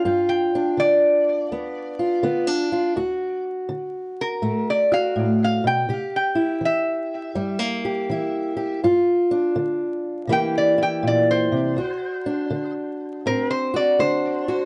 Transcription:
Already playing: D4 F5
0.05 G2 F4
0.29 G5
0.55 D4
0.77 D3 D5
1.51 D2 B3
1.99 F4
2.23 D3 B3
2.47 D4
2.72 F4
2.96 D2 F#4
3.69 D3
4.21 A#4
4.42 A2 A3
4.70 D5
4.92 F#4 F5
5.16 A2
5.44 F5
5.64 B2 G5
5.89 C3 G4
6.16 G5
6.35 E4
6.61 E3
6.65 E5
7.35 G2 G3
7.59 A#3
7.85 G4
8.10 E3 E4
8.57 G4
8.83 G2 F4
9.31 D4
9.56 D3
10.27 C3 E3 A#3 E4 G4
10.32 G5
10.58 D5
10.78 E4
10.83 G5
11.03 A#2
11.07 D5
11.31 C5
11.52 C3
11.77 D2 F#4
12.26 D4
12.50 D3
13.26 A2 C4 A#4
13.51 C5
13.74 F#4 D5
13.99 D3 D4 C5
14.48 F#4

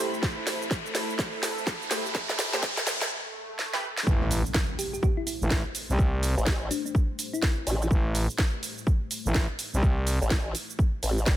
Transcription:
Already playing: A3 E4 G4 A4 C5 E5 B5, riser
0.00 A3 G4 C5
0.14 shaker
0.23 A4, kick, snare, shaker
0.47 snare, open hi-hat, shaker
0.62 shaker
0.71 kick, snare, shaker
0.86 shaker
0.95 snare, open hi-hat, shaker
1.10 shaker
1.19 kick, snare, shaker
1.43 snare, open hi-hat, shaker
1.58 shaker
1.67 kick, snare, shaker
1.82 shaker
1.91 A3 G4 C5, snare, open hi-hat, shaker
2.06 shaker
2.15 kick, snare, shaker
2.29 snare
2.39 snare, open hi-hat, shaker
2.53 A3 G4 C5, snare, shaker
2.63 kick, snare, shaker
2.77 snare, shaker
2.87 snare, open hi-hat, shaker
3.01 snare, shaker
3.11 swell
3.59 snare
3.73 A3 G4 B4, snare
3.97 snare
4.07 A1 A3 E4 G4 C5, kick, impact, shaker
4.31 open hi-hat, shaker
4.46 shaker
4.54 kick, snare, shaker
4.79 G4, open hi-hat, shaker
4.93 G4, shaker
5.03 G4, kick, shaker
5.17 E4
5.27 E4, open hi-hat, shaker
5.41 A1, shaker
5.50 kick, snare, shaker
5.75 open hi-hat, shaker
5.89 C2, shaker
5.99 kick, shaker
6.23 open hi-hat, shaker
6.37 A1, shaker
6.46 kick, snare, shaker
6.71 D4, open hi-hat, shaker
6.86 D4, shaker
6.95 kick, shaker
7.19 open hi-hat, shaker
7.33 E4, shaker
7.42 kick, snare, shaker
7.67 A1, open hi-hat, shaker
7.82 shaker
7.91 A1, kick, shaker
8.15 open hi-hat, shaker
8.30 shaker
8.38 kick, snare, shaker
8.63 open hi-hat, shaker
8.78 shaker
8.87 kick, shaker
9.11 open hi-hat, shaker
9.25 A1, shaker
9.34 kick, snare, shaker
9.59 open hi-hat, shaker
9.73 C2, shaker
9.83 kick, shaker
10.07 open hi-hat, shaker
10.21 A1, shaker
10.30 kick, snare, shaker
10.55 open hi-hat, shaker
10.70 shaker
10.79 kick, shaker
11.03 A1, open hi-hat, shaker
11.18 shaker
11.26 G1, kick, snare, open hi-hat, shaker

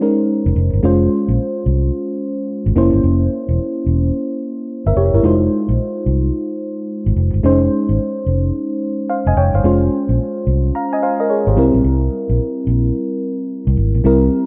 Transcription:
Already playing: C#4 D#4 C5
0.00 G#3 C#4 D#4 A#4
0.46 F1
0.56 F1
0.73 G1
0.83 G#3 C#4 F4 C5
1.28 A#1
1.66 C2
2.66 G#1
2.76 F1 A#3 C#4 E4 C5
2.93 G1
3.04 F1
3.49 E1
3.86 E1
4.86 G1 A#4 E5
4.96 F1 G4 C#5
5.14 G1 E4 A#4
5.23 F1 G#3 D#4 F4 C5
5.69 A#1
6.06 C2
7.06 G#1
7.16 F1
7.34 G1
7.43 F1 G#3 C#4 D#4 C5
7.89 G#1
8.26 F1
9.10 C5 F5
9.26 F1 D#5 G#5
9.37 F1 C#5 G5
9.54 G1 C5 F5
9.64 F1 G#3 C#4 F4 C5
10.09 A#1
10.47 C2
10.75 F5 A#5
10.93 D#5 G#5
11.03 C5 F5
11.20 A#4 D#5
11.30 G#4 C#5
11.47 G#1 G4 C5
11.56 C2 G3 C4 E4 A#4
11.74 A#1
11.84 C2
12.29 A#1
12.67 A#1
13.67 C2
13.77 G#1
13.94 A#1
14.04 C2 G3 C4 E4 A#4

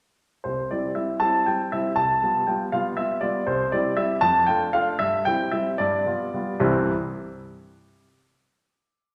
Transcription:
0.44 C2 C5
0.71 G3 C4 E4 D5
0.95 G3 C4 E4 E5
1.20 G3 C4 E4 A5
1.46 G3 C4 E4 G5
1.72 G3 C4 E4 E5
1.96 C2 A5
2.23 G3 B3 F4
2.47 G3 B3 F4 G5
2.72 G3 B3 F4 F5
2.97 G3 B3 F4 E5
3.21 G3 B3 F4 D5
3.47 C2 C5
3.72 G3 C4 E4 D5
3.97 G3 C4 E4 E5
4.21 F2 A5
4.47 A3 D4 F4 G5
4.73 A3 D4 F4 F5
4.99 G2 E5
5.25 G3 C4 E4 G5
5.51 G3 C4 E4 E5
5.78 G2 D5
6.06 G3 B3 F4
6.34 G3 B3 F4
6.60 C2 G2 E3 G3 C4 E4 C5

